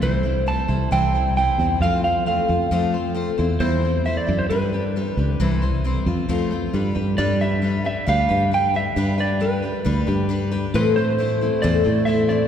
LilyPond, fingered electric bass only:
\new Staff \with { instrumentName = "Fingered electric bass" } { \clef bass \time 4/4 \key g \mixolydian \tempo 4 = 134 c,4. c,8 c,4. e,8 | f,4. f,8 f,4. e,8 | e,4. fis,8 g,4. des,8 | c,4. f,8 f,4 g,8 g,8 |
g,2 d,8 g,4. | g,2 d,8 g,4. | a,2 e,8 a,4. | }